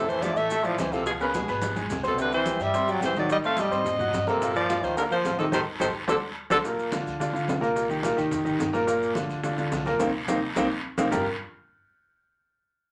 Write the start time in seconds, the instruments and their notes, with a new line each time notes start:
Already playing: upright bass F2, grand piano A2 A3 A4, trombone C3, alto saxophone A4
0.09 trombone E3, alto saxophone C5, high bongo, high conga, maracas
0.22 grand piano E3 E4 E5, trombone F3, alto saxophone D5, high bongo, high conga, short guiro, maracas
0.36 upright bass A2, trombone A3, alto saxophone E5, high bongo, high conga, short guiro, maracas
0.50 grand piano A3 A4 A5, high bongo, high conga, long guiro, maracas
0.64 grand piano E3 E4 E5, trombone F3, alto saxophone D5, high bongo, high conga, maracas
0.78 upright bass C#2, trombone E3, alto saxophone C5, high bongo, low bongo, high conga, short guiro, maracas
0.92 trombone C3, grand piano F3 F4 F5, alto saxophone A4, high conga, short guiro, maracas
1.06 trombone B2, alto saxophone G#4, high bongo, high conga, long guiro, maracas
1.20 trombone C#3, grand piano B3 B4 B5, alto saxophone A#4, high bongo, high conga, maracas
1.34 trombone B2, grand piano G#3 G#4 G#5, alto saxophone G#4, high bongo, high conga, short guiro, maracas
1.48 upright bass G#1, grand piano B3 B4 B5, high bongo, high conga, short guiro, maracas
1.62 high bongo, high conga, long guiro, maracas
1.75 grand piano G#3 G#4 G#5, high bongo, high conga, maracas
1.90 upright bass C2, high bongo, low bongo, low conga, short guiro, maracas
2.03 trombone B2, grand piano C4 C5 C6, low conga, short guiro, maracas
2.08 alto saxophone A4
2.18 grand piano C3 C4 C5, trombone D3, alto saxophone B4, high bongo, high conga, long guiro, maracas
2.32 trombone E3, alto saxophone C5, high conga, maracas
2.46 grand piano G3 G4 G5, high bongo, high conga, short guiro, maracas
2.60 upright bass G2, trombone G3, alto saxophone E5, high bongo, high conga, short guiro, maracas
2.73 grand piano C4 C5 C6, high bongo, high conga, long guiro, maracas
2.87 trombone F#3, grand piano G3 G4 G5, alto saxophone D5, high bongo, high conga, maracas
3.01 upright bass A2, trombone E3, high bongo, low bongo, high conga, short guiro, maracas
3.05 alto saxophone C5
3.14 grand piano D#3 D#4 D#5, trombone F#3, high conga, short guiro, maracas
3.19 alto saxophone D5
3.29 trombone G3, alto saxophone D#5, high bongo, high conga, long guiro, maracas
3.43 trombone A3, grand piano C4 C5 C6, alto saxophone F5, high bongo, high conga, maracas
3.57 grand piano G3 G4 G5, trombone G3, alto saxophone D#5, high bongo, high conga, short guiro, maracas
3.71 upright bass G#2, grand piano C4 C5 C6, high bongo, high conga, short guiro, maracas
3.85 high bongo, high conga, low conga, long guiro, maracas
3.99 grand piano F#3 F#4 F#5, high bongo, high conga, low conga, maracas
4.13 upright bass G2, high bongo, low bongo, high conga, short guiro, maracas
4.27 trombone C3, grand piano A#3 A#4 A#5, alto saxophone A4, high conga, short guiro, maracas
4.41 grand piano A#2 A#3 A#4, high bongo, high conga, long guiro, maracas
4.56 trombone F3, alto saxophone D5, high bongo, high conga, maracas
4.69 grand piano F3 F4 F5, high bongo, high conga, short guiro, maracas
4.83 upright bass D2, trombone D#3, alto saxophone C5, high bongo, high conga, short guiro, maracas
4.97 trombone D3, grand piano A#3 A#4 A#5, alto saxophone A#4, high bongo, high conga, long guiro, maracas
5.11 grand piano F3 F4 F5, trombone F3, alto saxophone C5, high bongo, high conga, maracas
5.24 upright bass A1, high bongo, low bongo, high conga, short guiro, maracas
5.38 trombone C3, grand piano D#3 D#4 D#5, alto saxophone A4, high conga, short guiro, maracas
5.52 upright bass A1, trombone D#3, grand piano G4 A4 C5, alto saxophone C5, high bongo, high conga, long guiro, maracas
5.80 upright bass A1, trombone D#3, grand piano G4 A4 C5, alto saxophone C5, high bongo, high conga, long guiro, maracas
6.08 upright bass D2, trombone D3, grand piano A4 C5 D5, alto saxophone A4, high bongo, high conga, maracas
6.50 upright bass D2, trombone D3, grand piano A4 C5 D5, alto saxophone A4, high bongo, high conga, long guiro, maracas
6.65 grand piano A#2 A#3 A#4, high bongo, high conga, long guiro, maracas
6.78 high conga, maracas
6.92 grand piano D3 D4 F4, high bongo, high conga, short guiro, maracas
7.06 upright bass D2, high bongo, high conga, short guiro, maracas
7.19 grand piano D3 D4 F4, high bongo, high conga, long guiro, maracas
7.33 grand piano D3 D4 F4, high bongo, high conga, maracas
7.47 upright bass C2, high bongo, low bongo, high conga, short guiro, maracas
7.60 grand piano A#2 A#3 A#4, short guiro, maracas
7.76 high bongo, high conga, long guiro, maracas
7.89 grand piano D#3 D#4 G4, high conga, maracas
8.03 grand piano A#2 A#3 A#4, high bongo, high conga, short guiro, maracas
8.16 upright bass C2, grand piano D#3 D#4 G4, high bongo, high conga, short guiro, maracas
8.31 high bongo, high conga, low conga, long guiro, maracas
8.44 upright bass A1, grand piano D#3 D#4 G4, high bongo, high conga, maracas
8.59 upright bass G1, high bongo, low bongo, high conga, short guiro, maracas
8.73 grand piano A#2 A#3 A#4, high bongo, high conga, short guiro, maracas
8.87 grand piano A#2 A#3 A#4, high bongo, high conga, long guiro, maracas
9.01 high conga, maracas
9.15 grand piano D3 D4 F4, high bongo, high conga, short guiro, maracas
9.29 upright bass D2, high bongo, high conga, short guiro, maracas
9.43 grand piano D3 D4 F4, high bongo, high conga, long guiro, maracas
9.57 grand piano D3 D4 F4, high bongo, high conga, maracas
9.71 upright bass C2, high bongo, low bongo, high conga, short guiro, maracas
9.86 grand piano A#2 A#3 A#4, high bongo, high conga, short guiro, maracas
10.00 upright bass C2, grand piano A#3 C4 D#4, low bongo, high conga, long guiro, maracas
10.27 upright bass C2, grand piano A#3 C4 D#4, low bongo, high conga, long guiro, maracas
10.55 upright bass C2, grand piano A#3 C4 D#4, low bongo, high conga, long guiro, maracas
10.97 upright bass C2, grand piano A#3 C4 D#4, low bongo, high conga, long guiro, maracas
11.11 upright bass G1, grand piano G3 D4 F4 G4 A#4 D5, low bongo, low conga, long guiro, maracas